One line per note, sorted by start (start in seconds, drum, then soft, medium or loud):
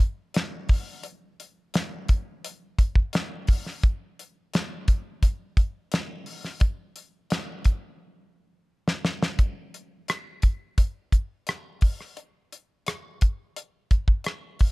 0.00 closed hi-hat medium
0.34 snare loud
0.34 closed hi-hat medium
0.69 kick loud
0.69 open hi-hat medium
1.03 closed hi-hat medium
1.40 closed hi-hat medium
1.74 snare loud
1.74 closed hi-hat medium
2.08 kick medium
2.08 closed hi-hat medium
2.44 closed hi-hat loud
2.79 kick medium
2.79 closed hi-hat medium
2.95 kick medium
3.13 snare loud
3.13 closed hi-hat medium
3.47 kick loud
3.47 open hi-hat medium
3.66 snare soft
3.83 kick loud
3.83 closed hi-hat medium
4.19 closed hi-hat medium
4.54 snare loud
4.54 closed hi-hat medium
4.88 kick medium
4.88 closed hi-hat medium
5.23 kick medium
5.23 closed hi-hat loud
5.57 kick loud
5.57 closed hi-hat medium
5.92 snare loud
5.92 closed hi-hat medium
6.26 open hi-hat medium
6.45 snare soft
6.60 kick loud
6.60 closed hi-hat medium
6.96 closed hi-hat medium
7.30 snare loud
7.30 closed hi-hat medium
7.65 kick medium
7.65 closed hi-hat medium
8.88 snare medium
9.05 snare medium
9.23 snare loud
9.39 kick loud
9.39 closed hi-hat medium
9.74 closed hi-hat medium
10.08 cross-stick loud
10.08 closed hi-hat medium
10.42 kick medium
10.42 closed hi-hat medium
10.78 kick medium
10.78 closed hi-hat medium
11.12 kick medium
11.12 closed hi-hat medium
11.47 cross-stick loud
11.47 closed hi-hat medium
11.81 kick medium
11.81 open hi-hat medium
12.01 cross-stick soft
12.17 closed hi-hat medium
12.52 closed hi-hat medium
12.86 cross-stick medium
12.86 closed hi-hat medium
13.21 kick medium
13.21 closed hi-hat medium
13.56 closed hi-hat medium
13.91 kick medium
13.91 closed hi-hat medium
14.08 kick medium
14.24 cross-stick loud
14.24 closed hi-hat medium
14.59 kick medium
14.59 open hi-hat medium